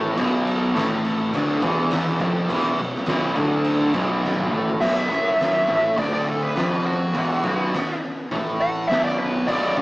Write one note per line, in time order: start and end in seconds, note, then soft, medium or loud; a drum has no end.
0.00 0.16 A1 loud
0.00 0.16 A2 loud
0.00 0.17 A3 loud
0.17 0.72 B0 loud
0.17 0.74 B1 loud
0.17 0.75 B2 loud
0.17 kick loud
0.17 crash medium
0.47 crash medium
0.75 1.30 A1 loud
0.75 1.32 A2 loud
0.75 1.33 A3 loud
0.75 snare loud
0.75 crash medium
1.04 crash medium
1.33 1.60 D1 medium
1.33 1.61 D2 loud
1.33 1.62 D3 loud
1.33 kick loud
1.33 crash medium
1.62 2.16 E1 loud
1.62 2.19 E2 medium
1.62 2.20 E3 loud
1.62 kick loud
1.62 crash medium
1.91 snare loud
1.91 crash loud
2.20 2.47 F1 loud
2.20 2.48 F2 medium
2.20 2.49 F3 loud
2.20 kick loud
2.20 crash medium
2.49 2.76 E1 medium
2.49 2.77 E2 loud
2.49 2.78 E3 loud
2.49 kick loud
2.49 crash medium
2.77 3.05 B0 medium
2.77 3.02 B1 medium
2.77 crash medium
2.94 snare soft
3.06 3.34 B0 loud
3.06 3.35 B1 medium
3.06 3.36 B2 loud
3.06 snare loud
3.06 crash medium
3.35 3.91 D1 loud
3.35 3.92 D2 medium
3.35 3.93 D3 loud
3.35 kick loud
3.35 crash medium
3.64 crash medium
3.93 4.49 B0 medium
3.93 4.51 B1 loud
3.93 4.51 B2 medium
3.93 kick loud
3.93 crash medium
4.25 snare medium
4.38 high tom medium
4.52 4.79 A1 loud
4.52 4.80 A2 medium
4.52 4.81 A3 loud
4.52 mid tom medium
4.68 floor tom loud
4.81 5.09 B0 medium
4.81 5.09 B1 loud
4.81 5.10 B2 loud
4.81 5.94 E5 loud
4.81 kick loud
4.81 crash loud
5.10 5.65 F#1 loud
5.10 5.67 F#2 medium
5.10 5.68 F#3 loud
5.10 kick loud
5.40 snare loud
5.40 open hi-hat medium
5.67 5.96 A1 loud
5.67 5.97 A2 loud
5.67 5.97 A3 medium
5.67 kick loud
5.97 6.52 D1 medium
5.97 6.55 D2 medium
5.97 6.56 D3 loud
5.97 6.12 D5 medium
5.97 kick loud
5.97 open hi-hat medium
6.14 6.27 D5 medium
6.27 6.43 A4 medium
6.43 6.85 B4 medium
6.56 7.11 F1 loud
6.56 7.13 F2 medium
6.56 7.14 F3 loud
6.56 snare loud
6.56 open hi-hat medium
6.86 7.99 F#4 loud
7.14 7.42 E1 medium
7.14 7.42 E2 loud
7.14 7.43 E3 loud
7.14 kick loud
7.14 open hi-hat medium
7.44 7.71 B0 loud
7.44 7.72 B1 medium
7.44 7.72 B2 loud
7.44 kick loud
7.73 snare loud
7.73 open hi-hat medium
8.31 8.85 A1 medium
8.31 8.89 A2 medium
8.31 8.89 A3 loud
8.31 kick loud
8.31 open hi-hat medium
8.61 8.88 F#5 loud
8.88 9.44 B0 medium
8.88 9.47 B1 loud
8.88 9.47 B2 loud
8.88 9.03 E5 medium
8.88 snare loud
8.88 open hi-hat medium
9.05 9.19 D5 medium
9.19 9.47 B4 medium
9.47 9.75 B0 medium
9.47 9.76 B1 medium
9.47 9.76 B2 loud
9.47 9.76 D5 loud
9.47 kick loud
9.47 crash loud
9.65 snare soft
9.77 9.82 F#1 loud
9.77 9.82 F#2 medium
9.77 9.82 F#3 loud
9.77 kick medium